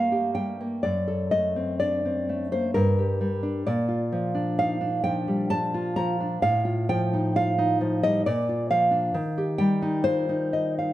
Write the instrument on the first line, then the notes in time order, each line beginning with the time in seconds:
nylon-string guitar
Already playing: G2 G3 A3 A#3 F5
0.12 G4
0.35 G3 G5
0.61 A#3
0.83 F#2 D5
1.08 A4
1.31 A3 D#5
1.56 C4
1.80 D4 D5
2.05 C4
2.29 A3
2.52 A#3 C5
2.74 G2 A#4
2.99 G4
3.21 G3
3.43 D4
3.67 A#2 D5
3.88 F4
4.12 F3
4.35 D4
4.59 D#4 F5
4.81 D4
5.04 F3 G5
5.28 G3
5.50 D4 A5
5.74 F4
5.96 F3 A#5
6.20 D4
6.42 A2 F5
6.65 F4
6.89 F3 G5
7.13 D#4
7.36 F4 F5
7.58 D#4
7.81 F3
8.03 G3 D#5
8.26 A#2 D5
8.49 F4
8.71 F3 F5
8.91 D4
9.14 D#3
9.38 G4
9.58 G3 G5
9.82 D#4
10.04 F4 C5
10.29 D#4
10.53 D#5
10.79 F5